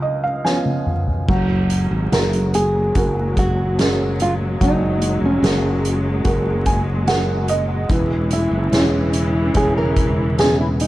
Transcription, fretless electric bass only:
1.28 F#1
1.91 G#1
2.12 F#1
2.95 F#1
4.61 F#1
5.22 F1
5.43 F#1
6.25 F#1
7.89 E1
8.51 F#1
8.72 E1
9.55 E1

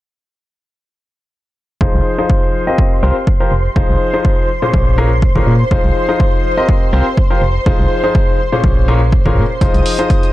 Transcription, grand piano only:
1.81 F3 D#4 F4 G#4 C5
2.18 F3 D#4 F4 G#4 C5
2.67 C4 F4 G4 A#4 D#5
3.03 C4 F4 G4 A#4 C5
3.40 F3 F4 G4 A#4 C5
3.76 F3 D#4 F4 G#4 C5
4.13 F3 D#4 F4 G#4 C5
4.62 A#2 C#4 F4 G#4 C5
4.98 A#2 C#4 F4 G#4 A#4
5.35 A#2 C#4 F4 G#4 A#4
5.71 F3 D#4 F4 G#4 C5
6.09 F3 D#4 F4 G#4 C5
6.57 C4 F4 G4 A#4 D#5
6.93 C4 F4 G4 A#4 C5
7.30 F3 F4 G4 A#4 C5
7.66 F3 D#4 F4 G#4 C5
8.04 F3 D#4 F4 G#4 C5
8.52 A#2 C#4 F4 G#4 C5
8.88 A#2 C#4 F4 G#4 A#4
9.26 A#2 C#4 F4 G#4 A#4
9.61 F3 D#4 F4 G#4 C5
9.99 F3 D#4 F4 G#4 C5

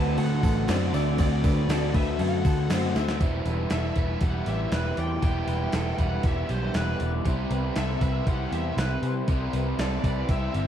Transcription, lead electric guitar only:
Already playing: A5
0.18 F#5
0.69 D5
0.94 D5
1.20 D5
1.96 E5
2.21 F#5
3.72 E5
4.23 F#5
4.48 E5
4.74 B4
4.99 G5
5.24 G5
6.01 F#5
6.26 E5
6.50 C5
6.77 B4
7.78 E5
8.03 E5
8.28 F#5
8.52 E5
8.78 B4
9.80 D5
10.05 D5
10.31 E5

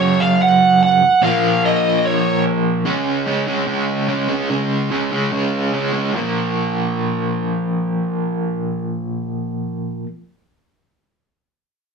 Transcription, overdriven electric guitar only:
Already playing: F#2 C#3 F#3
1.22 A#2 F3 A#3
2.85 C#3 G#3 C#4
3.26 C#3 G#3 C#4
3.47 C#3 G#3 C#4
3.67 C#3 G#3 C#4
4.08 C#3 G#3 C#4
4.29 C#3 G#3 C#4
4.50 C#3 G#3 C#4
4.91 C#3 G#3 C#4
5.12 C#3 G#3 C#4
5.32 C#3 G#3 C#4
5.73 C#3 G#3 C#4
5.93 C#3 G#3 C#4
6.13 A#2 F3
6.17 A#3

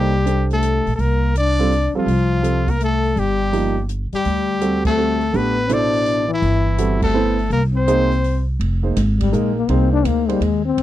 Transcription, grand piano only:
Already playing: A#3 D#4 A4 C5
0.26 D4 G4 A4 C5
1.59 G3 C4 F4 A4
1.95 G3 C4 F4 A4
2.42 G3 C4 F4 A4
3.53 F3 A#3 D#4 G4
4.61 G3 C4 F#4 A4
4.97 G3 C4 F#4 A4
5.34 A3 D4 G4 B4
5.69 B2 E4 A4 C5
6.78 G3 C4 F#4 A4
7.14 B3 E4 A4 C5
7.87 A#3 D#4 G#4 C5
8.83 A#3 D#4 G#4 C5
9.32 A#3 D#4 G#4 A#4
9.69 A#3 D#4 G#4 C5
10.29 A#3 D#4 G#4 C5

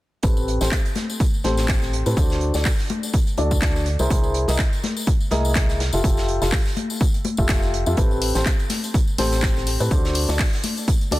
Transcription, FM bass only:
0.23 A1
0.61 A1
1.44 A1
2.06 A2
2.17 D2
2.55 D2
3.38 D2
4.00 C2
4.10 C2
4.48 C2
5.31 C2
5.93 F1
6.42 F1
7.38 F1
7.87 F2
7.97 A1
8.35 A1
9.19 A1
9.80 A2
9.91 D2
10.29 D2
11.12 D2

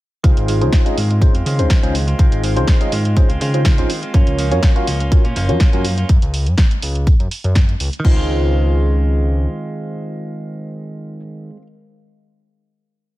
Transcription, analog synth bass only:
0.24 C#2
0.37 G#1
0.61 C#2
0.97 G#2
1.34 F2
1.46 C#3
1.59 C#2
1.83 C#2
2.19 C#2
2.32 G#1
2.56 C#2
2.92 G#2
3.30 C#2
3.41 C#3
3.78 G#1
4.14 F#2
4.27 C#2
4.52 F#2
4.87 C#2
5.25 A#2
5.36 F#1
5.49 F#2
5.73 F#2
6.09 F#2
6.22 C#2
6.47 F#2
6.83 C#2
7.20 F#2
7.44 F#2
7.80 C#2
8.05 C#2

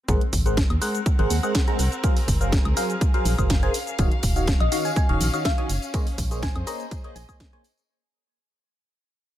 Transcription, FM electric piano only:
0.08 G#3 G#4 A#4 C5 F#5
0.46 G#3 G#4 A#4 C5 F#5
0.81 G#3 G#4 A#4 C5 F#5
1.19 G#3 G#4 A#4 C5 F#5
1.43 G#3 G#4 A#4 C5 F#5
1.68 G#3 G#4 A#4 C5 A#5
2.03 F#3 G#4 A#4 C5 F5
2.41 F#3 G#4 A#4 C5 F5
2.77 F#3 G#4 A#4 C5 F5
3.14 F#3 G#4 A#4 C5 F5
3.38 F#3 G#4 A#4 C5 F5
3.63 G#4 A#4 C5 G#5
3.99 D#3 F#4 C#5 D#5 F5
4.36 D#3 F#4 C#5 D#5 F5
4.72 D#3 F#4 C#5 D#5 F5
5.09 D#3 F#4 C#5 D#5 F5
5.34 D#3 F#4 C#5 D#5 F5
5.58 D#3 F#4 C#5 D#5 G#5
5.94 A#3 G#4 C5 C#5 D#5
6.31 A#3 G#4 C5 C#5 D#5
6.67 A#3 G#4 C5 C#5 D#5
7.04 A#3 G#4 C5 C#5 D#5
7.29 A#3 G#4 C5 C#5 D#5
7.53 A#3 G#4 C5 C#5 G#5

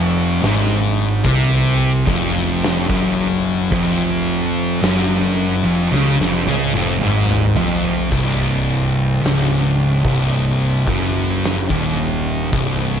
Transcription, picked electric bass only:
Already playing: F1
0.43 G#1
1.25 C2
2.08 F1
2.89 F#1
3.71 F1
4.83 F#1
5.64 F1
5.93 C#2
6.19 F1
6.47 C#2
6.75 F1
7.03 G#1
7.58 F1
8.12 C1
9.23 C#1
10.05 C1
10.87 F#1
11.70 D#1
12.52 C1

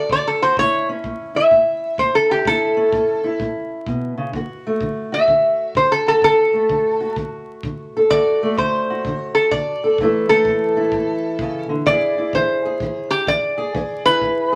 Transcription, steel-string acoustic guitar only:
Already playing: A3 F#4 A4
0.12 D3
0.42 F#4
0.59 A2 E4
0.89 C#4
1.05 A2
1.35 E4
1.51 A2
1.99 A2
2.30 E4
2.46 A2 E4
2.77 C#4
2.93 A2
3.24 E4
3.41 A2
3.87 B2
4.18 C#3
4.35 D3 F#4
4.67 A3
4.82 D3
5.12 F#4
5.28 D3
5.76 D3
6.07 F#4
6.23 D3 F#4
6.53 A3
6.69 D3
7.00 F#4
7.16 D3
7.65 D3
7.97 A4
8.12 D3 F#4
8.43 A3
8.60 D3
8.90 F#4
9.07 D3
9.53 D3
9.84 A4
10.00 A2 E3 A3 E4 A4
10.30 A3
10.48 A2
10.77 E4
10.94 A2
11.41 C#3
11.69 D3
11.88 E3 E4 G#4
12.18 E4
12.35 E3
12.65 G#4
12.82 E3
13.28 E3
13.58 G#4
13.75 E3 G#4
14.06 E4
14.22 E3

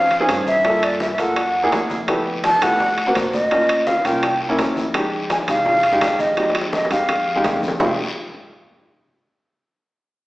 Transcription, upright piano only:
0.20 C4 C#4 D#4 G#4
0.65 A#3 F4 A4
1.18 A#3 F4 A4
1.63 A#3 E4 G#4
2.08 A3 B3 E4 G4
2.62 A3 B3 E4 G4
3.07 A#3 C4 F#4
3.51 A#3 C#4 F4
4.04 A#3 C#4 F4
4.49 A#3 C#4 E4
4.94 G#3 D#4 G4
5.48 G#3 D#4 G4
5.92 G#3 D#4 G4
6.37 G#3 D#4 G4
6.90 G#3 D#4 G4
7.35 G#3 D#4 G4
7.80 G#3 D#4 G4

